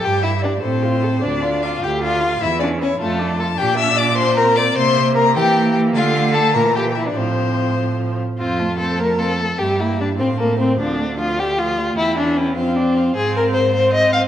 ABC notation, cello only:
X:1
M:6/8
L:1/8
Q:3/8=101
K:F
V:1 name="Cello" clef=bass
G,,3 A,,3 | D,,3 D,,3 | _F,,3 =F,,3 | B,,6 |
C,3 E,3 | D,3 B,,3 | A,,4- A,, z | F,,6 |
G,,3 A,,3 | D,,6 | E,,3 F,,3 | [K:Fm] A,,6 |]